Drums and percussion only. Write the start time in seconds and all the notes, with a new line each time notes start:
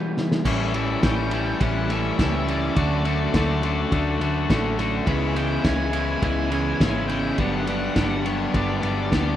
0.17 snare
0.32 snare
0.45 kick, crash
0.74 ride
1.03 kick, snare, ride
1.31 ride
1.60 kick, ride
1.90 ride
2.19 kick, snare, ride
2.48 ride
2.76 kick, ride
3.05 ride
3.34 kick, snare, ride
3.63 ride
3.92 kick, ride
4.21 ride
4.50 kick, snare, ride
4.79 snare, ride
5.07 kick, ride
5.36 ride
5.64 kick, snare, ride
5.93 ride
6.22 kick, ride
6.51 ride
6.81 kick, snare, ride
7.09 ride
7.38 kick, ride
7.67 ride
7.96 kick, snare, ride
8.26 ride
8.54 kick, ride
8.83 ride
9.12 kick, snare, ride